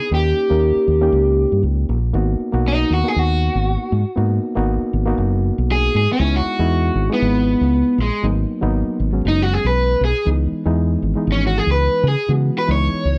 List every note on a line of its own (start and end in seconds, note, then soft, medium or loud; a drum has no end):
0.00 0.11 G#4 medium
0.11 0.32 D#2 medium
0.11 0.48 A#3 medium
0.11 0.48 C#4 medium
0.11 0.49 D#4 medium
0.11 0.49 G4 medium
0.11 1.61 G4 medium
0.50 0.71 D#2 medium
0.50 0.98 A#3 medium
0.50 0.98 C#4 medium
0.50 0.98 D#4 medium
0.50 0.98 A#4 medium
0.76 muted fingered electric bass stroke soft
0.88 1.08 D#2 medium
1.01 1.96 A#3 medium
1.01 1.96 C#4 medium
1.01 1.97 D#4 medium
1.01 1.97 G4 medium
1.12 1.45 C#2 loud
1.52 1.61 G2 medium
1.63 1.86 C#2 medium
1.89 2.12 A#1 medium
2.13 2.35 G#1 medium
2.13 2.51 A#3 medium
2.13 2.51 B3 medium
2.13 2.51 D#4 medium
2.13 2.52 F#4 medium
2.40 muted fingered electric bass stroke soft
2.52 2.83 B1 medium
2.52 3.01 A#3 medium
2.52 3.01 B3 medium
2.52 3.01 D#4 medium
2.52 3.01 F#4 medium
2.68 2.91 D#4 medium
2.90 3.02 D#2 medium
2.90 3.08 F#4 medium
3.03 3.99 A#3 medium
3.03 3.99 B3 medium
3.03 3.99 D#4 medium
3.03 4.00 F#4 medium
3.08 3.19 G#4 medium
3.16 3.48 D#2 medium
3.16 4.16 F#4 medium
3.55 3.76 G#1 medium
3.92 4.04 G#2 medium
4.16 4.38 G#2 medium
4.16 4.54 A#3 medium
4.16 4.54 B3 medium
4.16 4.54 D#4 medium
4.16 4.54 F#4 medium
4.55 4.77 G#1 medium
4.55 5.04 A#3 medium
4.55 5.04 B3 medium
4.55 5.04 D#4 medium
4.55 5.04 F#4 loud
4.82 muted fingered electric bass stroke soft
4.93 5.14 G#1 medium
5.06 6.02 A#3 medium
5.06 6.02 B3 medium
5.06 6.02 D#4 medium
5.06 6.02 F#4 medium
5.18 5.50 F#1 medium
5.58 5.88 B1 medium
5.72 5.95 G#4 medium
5.95 6.06 G#2 medium
5.95 6.10 G#4 medium
6.13 6.36 C#4 medium
6.19 6.41 C#2 medium
6.19 6.57 G#3 medium
6.19 6.57 B3 medium
6.19 6.57 D#4 medium
6.19 6.57 E4 medium
6.36 7.09 F#4 medium
6.59 6.89 E2 medium
6.59 7.07 G#3 medium
6.59 7.07 B3 medium
6.59 7.07 D#4 medium
6.59 7.08 E4 medium
6.95 7.07 G#1 medium
7.10 8.05 G#3 medium
7.10 8.05 B3 medium
7.10 7.97 B3 medium
7.10 8.06 D#4 medium
7.10 8.06 E4 medium
7.22 7.54 G#1 loud
7.61 7.82 C#2 medium
7.98 8.09 A#1 medium
7.98 8.25 G#3 medium
8.23 8.44 G#1 medium
8.23 8.60 F#3 medium
8.23 8.60 A#3 medium
8.23 8.61 B3 medium
8.23 8.61 D#4 medium
8.61 8.83 G#1 medium
8.61 9.09 F#3 medium
8.61 9.10 A#3 medium
8.61 9.10 B3 medium
8.61 9.10 D#4 medium
8.87 muted fingered electric bass stroke soft
9.00 9.20 G#1 medium
9.13 10.08 F#3 medium
9.13 10.08 G#3 medium
9.13 10.08 B3 medium
9.13 10.08 C#4 medium
9.25 9.57 F#1 loud
9.25 9.42 D#4 medium
9.42 9.54 F#4 medium
9.54 9.65 G#4 medium
9.64 9.94 B1 medium
9.64 10.01 B4 medium
10.01 10.12 B1 medium
10.01 10.27 G#4 medium
10.25 10.47 C#2 medium
10.25 10.63 E3 medium
10.25 10.63 G#3 medium
10.25 10.63 B3 medium
10.25 10.63 D#4 medium
10.52 muted fingered electric bass stroke soft
10.65 10.95 E2 medium
10.65 11.13 E3 medium
10.65 11.13 G#3 medium
10.65 11.13 B3 medium
10.65 11.13 D#4 medium
11.02 11.14 G#1 medium
11.16 12.10 E3 medium
11.16 12.11 G#3 medium
11.16 12.11 B3 medium
11.16 12.11 D#4 medium
11.27 11.59 G#1 medium
11.32 11.43 C#4 medium
11.47 11.58 F#4 medium
11.58 11.69 G#4 medium
11.67 11.87 C#2 medium
11.71 12.05 B4 medium
12.03 12.15 C#3 medium
12.08 12.30 G#4 medium
12.28 12.49 C#3 medium
12.28 12.65 E3 medium
12.28 12.66 G#3 medium
12.28 12.66 B3 medium
12.28 12.66 F#4 medium
12.59 12.70 B4 medium
12.67 12.89 C#2 medium
12.67 13.15 E3 medium
12.67 13.15 G#3 medium
12.67 13.15 B3 medium
12.67 13.16 D#4 medium
12.72 13.18 C#5 medium
13.05 13.18 C#2 medium